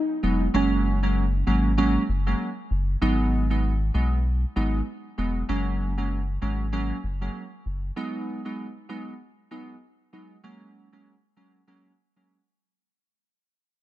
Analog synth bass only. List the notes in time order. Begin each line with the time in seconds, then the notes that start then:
0.23 E1
0.54 F#1
1.47 G#1
2.09 F#1
2.71 F#1
3.02 G#1
3.94 B1
4.56 G#1
5.18 E1
5.49 F#1
6.42 G#1
7.04 F#1
7.66 F#1